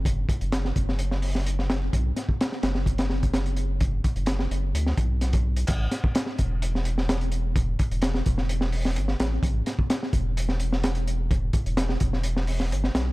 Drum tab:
CC |----------------|----------------|----------------|x---------------|
HH |x-xxx-x-x-o-x-x-|x-x-x-x-xx-xxxx-|x-xxx-x-x-x-xx-x|x-x-x-x-x-x-xxx-|
SD |----oo-o-o-o-oo-|--o-oooo-oo-o---|----oo---o--o---|--o-oo---o-oo---|
BD |o-o---o---------|o--o----o--o----|o-o-------o--o--|o--o--o---------|

CC |----------------|----------------|----------------|
HH |x-xxx-x-x-o-x-x-|x-x-x-x-x-x-xxx-|x-xxx-x-x-o-x-x-|
SD |----oo-o-o-o-oo-|--o-oo---o-oo---|----oo-o-o-o-oo-|
BD |o-o---o---------|o--o--o---------|o-o---o---------|